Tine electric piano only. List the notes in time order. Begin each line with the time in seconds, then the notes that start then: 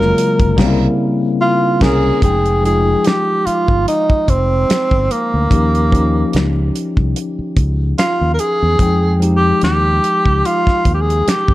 Already playing: C#3 F#3 G#3 A#3 F4
0.56 C#3 G3 A#3 C4
0.67 E4
1.82 C#4 A#4
2.21 F3 G#3 D#4 G5
2.62 F3 G#3 D#4 F4
5.50 F3 C#4 D#4 G4
5.91 F3 C#4 D#4 G4
8.78 F3 G#3 D#4 G5
9.19 F3 G#3 D#4 G4